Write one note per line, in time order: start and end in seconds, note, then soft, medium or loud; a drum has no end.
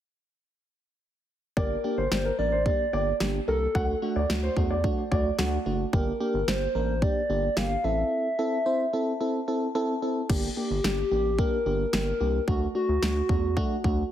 1.57 1.76 G1 loud
1.57 1.76 A#3 medium
1.57 1.76 D4 medium
1.57 1.76 G4 loud
1.57 2.08 A#4 medium
1.57 1.75 D5 medium
1.57 kick loud
1.84 2.03 A#3 medium
1.84 2.03 D4 medium
1.84 2.03 G4 medium
1.98 2.07 G1 medium
1.98 2.07 C5 medium
2.11 2.31 G1 medium
2.11 2.31 A#3 medium
2.11 2.31 D4 medium
2.11 2.31 G4 medium
2.11 2.37 C5 medium
2.11 snare loud
2.25 2.34 A#4 medium
2.38 2.67 A1 medium
2.38 2.58 A#3 medium
2.38 2.58 D4 medium
2.38 2.58 A#4 medium
2.38 2.64 D5 loud
2.52 2.61 C5 medium
2.66 2.85 A#3 medium
2.66 2.85 D4 medium
2.66 2.85 G4 medium
2.66 3.17 D5 loud
2.66 kick medium
2.93 3.12 G1 loud
2.93 3.13 A#3 medium
2.93 3.13 D4 medium
2.93 3.13 G4 medium
2.93 3.11 D5 medium
3.20 3.40 G1 loud
3.20 3.40 A#3 medium
3.20 3.40 D4 medium
3.20 3.40 G4 medium
3.20 snare loud
3.48 3.67 C2 medium
3.48 3.67 A#3 medium
3.48 3.67 D4 medium
3.48 3.67 G4 medium
3.48 3.98 A4 loud
3.48 3.57 A#4 medium
3.75 3.94 D2 loud
3.75 3.94 A3 medium
3.75 3.94 D4 medium
3.75 3.94 F#4 loud
3.75 3.93 F#5 medium
3.75 kick loud
4.02 4.22 A3 medium
4.02 4.22 D4 medium
4.02 4.22 F#4 loud
4.16 4.25 D2 loud
4.16 4.25 D5 medium
4.29 4.49 D2 loud
4.29 4.49 A3 medium
4.29 4.49 D4 medium
4.29 4.49 F#4 medium
4.29 snare loud
4.43 4.52 C5 medium
4.57 4.85 E2 medium
4.57 4.76 A3 medium
4.57 4.76 D4 medium
4.57 4.76 F#4 medium
4.57 kick medium
4.70 4.80 D5 medium
4.84 5.03 A3 medium
4.84 5.03 D4 medium
4.84 5.03 F#4 medium
4.84 kick medium
5.11 5.31 D2 loud
5.11 5.31 A3 medium
5.11 5.31 D4 medium
5.11 5.31 F#4 medium
5.11 5.50 D5 medium
5.11 kick medium
5.39 5.58 D2 medium
5.39 5.58 A3 loud
5.39 5.58 D4 medium
5.39 5.58 F#4 loud
5.39 snare loud
5.66 5.85 F#1 medium
5.66 5.85 A3 medium
5.66 5.85 D4 medium
5.66 5.85 F#4 medium
5.93 6.12 G1 loud
5.93 6.13 A#3 loud
5.93 6.13 D4 medium
5.93 6.13 G4 loud
5.93 6.49 A#4 medium
5.93 kick loud
6.20 6.40 A#3 medium
6.20 6.40 D4 medium
6.20 6.40 G4 loud
6.34 6.44 G1 loud
6.48 6.67 G1 medium
6.48 6.67 A#3 medium
6.48 6.67 D4 medium
6.48 6.67 G4 medium
6.48 7.04 C5 medium
6.48 snare loud
6.75 7.04 A1 medium
6.75 6.94 A#3 medium
6.75 6.94 D4 medium
6.75 6.94 A#4 medium
7.02 7.22 A#3 medium
7.02 7.22 D4 medium
7.02 7.22 G4 medium
7.02 7.58 D5 loud
7.02 kick medium
7.30 7.49 G1 medium
7.30 7.49 A#3 medium
7.30 7.49 D4 medium
7.30 7.49 G4 medium
7.57 7.76 G1 loud
7.57 7.76 A#3 medium
7.57 7.76 D4 medium
7.57 7.76 G4 loud
7.57 7.86 F5 loud
7.57 snare loud
7.84 8.03 A1 medium
7.84 8.28 C4 medium
7.84 8.28 E4 medium
7.84 8.28 A4 medium
7.84 9.75 E5 loud
8.39 8.58 C4 medium
8.39 8.58 E4 medium
8.39 8.58 A4 loud
8.66 8.85 C4 medium
8.66 8.85 E4 medium
8.66 8.85 C5 medium
8.93 9.13 C4 medium
8.93 9.13 E4 medium
8.93 9.13 A4 medium
9.21 9.40 C4 medium
9.21 9.40 E4 medium
9.21 9.40 A4 medium
9.48 9.67 C4 medium
9.48 9.67 E4 medium
9.48 9.67 A4 medium
9.75 9.94 C4 loud
9.75 9.94 E4 loud
9.75 9.94 A4 loud
10.02 10.22 C4 medium
10.02 10.22 E4 medium
10.02 10.22 A4 medium
10.30 10.49 G1 loud
10.30 10.49 A#3 medium
10.30 10.49 D4 medium
10.30 10.49 G4 loud
10.30 10.42 G4 medium
10.30 kick loud
10.30 crash medium
10.57 10.76 A#3 medium
10.57 10.76 D4 medium
10.57 11.40 G4 loud
10.57 10.76 G4 medium
10.71 10.80 G1 loud
10.84 11.03 G1 loud
10.84 11.03 A#3 medium
10.84 11.03 D4 medium
10.84 11.03 G4 medium
10.84 snare loud
11.11 11.40 A1 medium
11.11 11.31 A#3 medium
11.11 11.31 D4 medium
11.11 11.31 G4 medium
11.39 11.58 A#3 medium
11.39 11.58 D4 medium
11.39 11.58 G4 loud
11.39 11.93 A#4 loud
11.39 kick medium
11.66 11.85 G1 loud
11.66 11.85 A#3 medium
11.66 11.85 D4 medium
11.66 11.85 G4 medium
11.93 12.12 G1 loud
11.93 12.13 A#3 medium
11.93 12.13 D4 medium
11.93 12.13 G4 medium
11.93 12.44 A#4 loud
11.93 snare loud
12.20 12.40 C2 medium
12.20 12.40 A#3 medium
12.20 12.40 D4 medium
12.20 12.40 G4 medium
12.48 12.67 D2 loud
12.48 12.67 A3 medium
12.48 12.67 D4 medium
12.48 12.67 F#4 loud
12.48 12.60 F#4 medium
12.48 kick loud
12.75 12.94 A3 medium
12.75 12.94 D4 medium
12.75 12.94 F#4 medium
12.75 14.12 F#4 medium
12.89 12.98 D2 loud
13.02 13.21 D2 loud
13.02 13.22 A3 medium
13.02 13.22 D4 medium
13.02 13.22 F#4 medium
13.02 snare loud
13.29 13.58 E2 medium
13.29 13.49 A3 medium
13.29 13.49 D4 medium
13.29 13.49 F#4 medium
13.29 kick medium
13.57 13.76 A3 loud
13.57 13.76 D4 loud
13.57 13.76 F#4 loud
13.57 kick medium
13.84 14.03 D2 loud
13.84 14.03 A3 medium
13.84 14.03 D4 medium
13.84 14.03 F#4 loud
13.84 kick medium